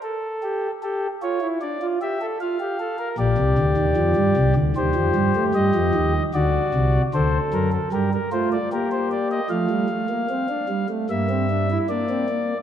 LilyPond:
<<
  \new Staff \with { instrumentName = "Pipe organ" } { \time 4/4 \key g \minor \tempo 4 = 76 << { a'8 g'8 a'8 cis''8 d''8 e''8 f''4 | d''2 c''4 ees''4 | d''4 c''8 bes'16 a'16 g'16 bes'16 c''16 d''16 bes'16 c''16 d''16 ees''16 | f''2 e''4 d''4 | } \\ { r4 g'8 f'16 e'16 d'16 f'16 g'16 a'16 f'16 g'16 a'16 bes'16 | g'2 g'2 | fis'4 a'4 bes'8 f'8 g'4 | f16 g16 a16 bes16 c'16 d'16 g16 a16 bes16 c'16 d'16 e'16 d'16 c'16 bes8 | } >> }
  \new Staff \with { instrumentName = "Pipe organ" } { \clef bass \time 4/4 \key g \minor r1 | <bes,, bes,>16 <c, c>16 <d, d>16 <ees, ees>16 <f, f>16 <g, g>16 <c, c>16 <d, d>16 <ees, ees>16 <f, f>16 <g, g>16 a16 <g, g>16 <f, f>16 <ees, ees>8 | <d, d>8 <c, c>8 <d, d>8 <fis, fis>8 <g, g>8 a8 bes4 | a2 <g, g>4 bes4 | }
>>